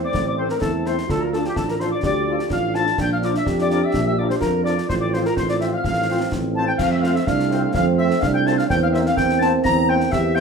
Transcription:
Already playing: A3 C4
0.04 D5 D6
0.13 A1, concert bass drum, snare
0.27 D5 D6
0.37 A3 C4 E4 A4 C5 C6
0.49 A#4 A#5, snare
0.61 E2 E4 A4 A5, concert bass drum, snare
0.85 A3 C4 E4 A4 C5 C6, snare
0.98 snare
1.07 D2 F3 D4 F4 A4 A5, concert bass drum, snare
1.21 A#4 A#5
1.33 F3 D4 F4 A4 A5, snare
1.45 G4 G5, snare
1.55 A1 A4 A5, concert bass drum, snare
1.69 A#4 A#5, snare
1.80 F3 D4 F4 A4 C5 C6, snare
1.91 D5 D6
2.02 D2 G4 D5 D6, concert bass drum, snare
2.28 F3 D4 F4 A4
2.39 snare
2.50 A1 F4 F5 F6, concert bass drum, snare
2.74 F3 D4 F4 A4 A5 A6, snare
2.87 snare
2.98 A#1 F3 D4 G5, concert bass drum, snare, crash
3.03 G6
3.13 F5 F6
3.22 F3 D4 F4 A#4 D5 D6, snare
3.35 E5 E6, snare
3.46 F2 G4, concert bass drum, snare
3.58 D5 D6, snare
3.70 F3 D4 F4 A#4 D5 D6, snare
3.84 E5 E6
3.93 A#1, concert bass drum, snare
4.07 E5 E6
4.18 F3 D4 F4 A#4 D5 D6
4.29 C5 C6, snare
4.40 F2 F4 A#4 A#5, concert bass drum, snare
4.64 F3 D4 F4 A#4 D5 D6, snare
4.78 snare
4.89 A1 F3 C4 C5 C6, concert bass drum, snare
5.01 D5 D6
5.13 F3 C4 F4 C5 C6, snare
5.25 A#4 A#5, snare
5.36 A1 C5 C6, concert bass drum, snare
5.48 D5 D6, snare
5.60 F3 C4 F4 C5 E5 E6, snare
5.73 F5
5.77 F6
5.83 A1 F5, concert bass drum, snare
5.87 F6
6.09 F3 C4 F4 C5
6.32 A1 C4, concert bass drum, snare
6.55 F3 C4 F4 C5 A5 A6
6.67 G5 G6
6.78 F2 A3 C4 F5 F6, concert bass drum, snare, crash
6.91 E5 E6
7.01 A3 C4 F4 C5 F5, snare
7.06 F6
7.15 E5 E6, snare
7.26 C2 D4 F5 F6, concert bass drum, snare
7.39 snare
7.50 A3 C4 F4 C5, snare
7.74 F2 C4 F5 F6, concert bass drum, snare
7.98 A3 C4 F4 C5 E5 E6
8.11 snare
8.21 C2 D4 F5 F6, concert bass drum, snare
8.34 G5 G6
8.45 A3 C4 F4 C5 A5 A6, snare
8.58 F5 F6, snare
8.69 E2 A#3 C4 G5 G6, concert bass drum, snare
8.83 F5 F6
8.92 A#3 C4 C5 E5 E6, snare
9.06 F5 F6, snare
9.17 E2 G5 G6, concert bass drum, snare
9.29 snare
9.39 A#3 C4 C5 A5 A6, snare
9.64 E2 A#5 A#6, concert bass drum, snare
9.88 A#3 C4 C5 G5 G6
10.00 snare
10.12 E2 G4 E5 E6, concert bass drum, snare
10.35 A#3 C4 C5 G5 G6, snare

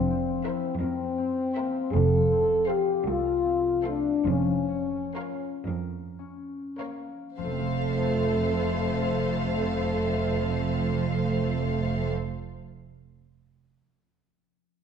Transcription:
Already playing: F1 F2 F3 C4
0.11 C4
0.45 E4 A#4 C5 E5
0.79 F2 C4 A#4
1.18 C4
1.55 A#3 A#4 C5 E5
1.93 F1 F2 F3 A4
2.31 C4
2.68 F4 G4 A4 C5 F5
3.06 C2 F4 A4
3.45 C4
3.83 A3 A4 C5 F5
3.88 D4
4.25 F1 F2 F3 C#4
4.68 C#4
5.16 F4 A#4 C#5 F5
5.65 F2 A#4
6.19 C#4
6.78 A#3 A#4 C#5 F5
7.38 F1 F2 F3 A4 C5 F5
7.42 A3
7.51 C4
7.58 F4
7.65 C5

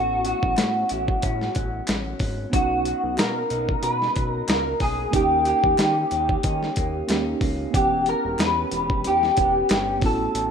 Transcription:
Already playing: A1 A2 E3 B3 C#4 E4 F#4
0.25 F#3 F#4, closed hi-hat
0.43 A1, kick
0.57 A2 C#4, snare, clap, closed hi-hat
0.89 A1 E4, closed hi-hat
1.08 kick
1.22 A2 C#4, kick, closed hi-hat
1.41 snare
1.55 A1 F#3, kick, closed hi-hat
1.87 A1 C#4, snare, clap, closed hi-hat
2.19 G#1 F#3, kick, open hi-hat
2.50 B1 B2 B3 C#4 D#4 F#4, kick, closed hi-hat
2.55 F#4
2.85 F#3, closed hi-hat
3.04 B1
3.18 B2 A#3 A#4, snare, clap, closed hi-hat
3.50 B1 D#4, closed hi-hat
3.69 kick
3.83 B2 B4, closed hi-hat
4.02 snare
4.15 B1 F#3, kick, closed hi-hat
4.30 A#4
4.48 C#2 A#3 A#4, snare, clap, closed hi-hat
4.80 B1 F#3 G#4, kick, open hi-hat
5.11 D#2 D#3 A#3 C#4 D#4 G4, kick, closed hi-hat
5.16 G4
5.45 A#3 G4, closed hi-hat
5.63 D#2, kick
5.78 D#3 C#4, snare, clap, closed hi-hat
6.11 D#2 G4, closed hi-hat
6.29 kick
6.43 D#3 C#4, kick, closed hi-hat
6.63 snare
6.76 D#2 A#3, kick, closed hi-hat
7.07 D#2 A#3 C#4 D#4 G4, snare, clap, closed hi-hat
7.41 C#2 A#3, kick, open hi-hat
7.71 E1 E3 B3 C#4 F#5, kick, closed hi-hat
7.75 G4
8.06 B3 A#4, closed hi-hat
8.25 E1
8.39 E2 C#4 B4, snare, clap, closed hi-hat
8.71 E1 G4, closed hi-hat
8.90 kick
9.04 E2 C#4 G4, closed hi-hat
9.23 snare
9.37 E1 B3, kick, closed hi-hat
9.69 G1 C#4, snare, clap, closed hi-hat
9.99 A1 B3 C#4 E4, kick, open hi-hat
10.03 A2 F#4 A4
10.35 A1 A2, closed hi-hat

